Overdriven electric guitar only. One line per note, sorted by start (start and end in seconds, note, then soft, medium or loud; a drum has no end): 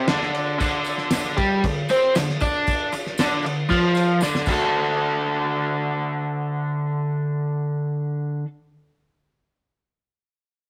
0.08 0.58 D3 loud
0.08 0.59 D4 loud
0.59 1.36 D3 loud
0.59 1.37 D4 loud
1.37 1.62 G3 medium
1.37 1.62 G4 loud
1.64 1.84 D3 medium
1.90 2.14 C4 medium
1.90 2.15 C5 loud
2.15 2.36 D3 medium
2.42 2.92 D4 loud
2.42 2.92 D5 loud
2.93 muted overdriven electric guitar stroke medium
3.20 3.44 D3 medium
3.20 3.44 D4 loud
3.45 3.65 D3 medium
3.69 4.20 F3 medium
3.69 4.20 F4 loud
4.23 4.46 D3 medium
4.23 4.47 D4 loud
4.47 8.43 D3 loud
4.47 8.45 D4 loud
4.47 8.46 F#4 loud
4.47 8.47 A4 loud